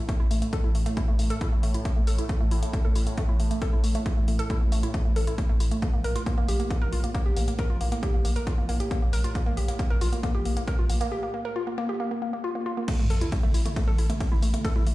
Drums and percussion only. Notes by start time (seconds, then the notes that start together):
0.09 kick, closed hi-hat
0.31 open hi-hat
0.42 closed hi-hat
0.53 kick, closed hi-hat
0.75 open hi-hat
0.86 closed hi-hat
0.97 kick, closed hi-hat
1.19 open hi-hat
1.30 closed hi-hat
1.41 kick, closed hi-hat
1.63 open hi-hat
1.74 closed hi-hat
1.85 kick, closed hi-hat
2.07 open hi-hat
2.18 closed hi-hat
2.29 kick, closed hi-hat
2.51 open hi-hat
2.63 closed hi-hat
2.73 kick, closed hi-hat
2.95 open hi-hat
3.07 closed hi-hat
3.18 kick, closed hi-hat
3.40 open hi-hat
3.51 closed hi-hat
3.62 kick, closed hi-hat
3.84 open hi-hat
3.95 closed hi-hat
4.06 kick, closed hi-hat
4.28 open hi-hat
4.39 closed hi-hat
4.50 kick, closed hi-hat
4.72 open hi-hat
4.83 closed hi-hat
4.94 kick, closed hi-hat
5.16 open hi-hat
5.27 closed hi-hat
5.38 kick, closed hi-hat
5.60 open hi-hat
5.71 closed hi-hat
5.82 kick, closed hi-hat
6.04 open hi-hat
6.16 closed hi-hat
6.26 kick, closed hi-hat
6.48 open hi-hat
6.60 closed hi-hat
6.70 kick, closed hi-hat
6.93 open hi-hat
7.04 closed hi-hat
7.15 kick, closed hi-hat
7.37 open hi-hat
7.48 closed hi-hat
7.59 kick, closed hi-hat
7.81 open hi-hat
7.92 closed hi-hat
8.03 kick, closed hi-hat
8.25 open hi-hat
8.36 closed hi-hat
8.47 kick, closed hi-hat
8.69 open hi-hat
8.80 closed hi-hat
8.91 kick, closed hi-hat
9.13 open hi-hat
9.24 closed hi-hat
9.35 kick, closed hi-hat
9.57 open hi-hat
9.68 closed hi-hat
9.79 kick, closed hi-hat
10.01 open hi-hat
10.13 closed hi-hat
10.23 kick, closed hi-hat
10.45 open hi-hat
10.57 closed hi-hat
10.68 kick, closed hi-hat
10.90 open hi-hat
11.01 closed hi-hat
12.88 kick, closed hi-hat, ride, crash
12.99 mid tom
13.10 open hi-hat
13.21 closed hi-hat, mid tom
13.32 kick, closed hi-hat, ride
13.43 mid tom
13.54 open hi-hat
13.66 closed hi-hat, mid tom
13.76 kick, closed hi-hat, ride
13.88 mid tom
13.98 open hi-hat
14.10 closed hi-hat, mid tom
14.20 kick, closed hi-hat, ride
14.32 mid tom
14.42 open hi-hat
14.54 closed hi-hat, mid tom
14.65 kick, closed hi-hat, ride
14.76 mid tom
14.87 open hi-hat